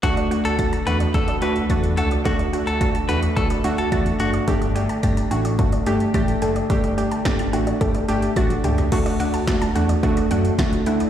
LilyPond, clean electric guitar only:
\new Staff \with { instrumentName = "Clean electric guitar" } { \time 4/4 \key d \major \tempo 4 = 108 fis'16 r8 a'8 r16 b'16 r16 a'8 b'16 r8. a'16 r16 | fis'16 r8 a'8 r16 b'16 r16 a'16 r8 a'16 r8 fis'16 r16 | r1 | r1 |
r1 | }